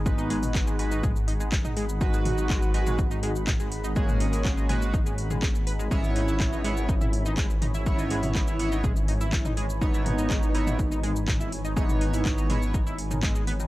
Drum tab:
HH |--oo--o---o---o-|--o---o---o---o-|--oo--o---o---o-|--o---o---o---o-|
SH |xx-xxx-xxx-xxx-x|xx-xxx-xxx-xxx-x|xx-xxx-xxx-xxx-x|xx-xxx-xxx-xxx-x|
CP |----x-------x---|----x-------x---|----x-------x---|----x-------x---|
T2 |---o----o----o--|--o----o----o---|-o----o----o----|----o----o----o-|
BD |o---o---o---o---|o---o---o---o---|o---o---o---o---|o---o---o---o---|

HH |--oo--o---o---o-|--o---o---o---o-|--oo--o---o---o-|
SH |xx-xxx-xxx-xxx-x|xx-xxx-xxx-xxx-x|xx-xxx-xxx-xxx-x|
CP |----x-------x---|----x-------x---|----x-------x---|
T2 |---o----o----o--|--o----o----o---|-o----o----o----|
BD |o---o---o---o---|o---o---o---o---|o---o---o---o---|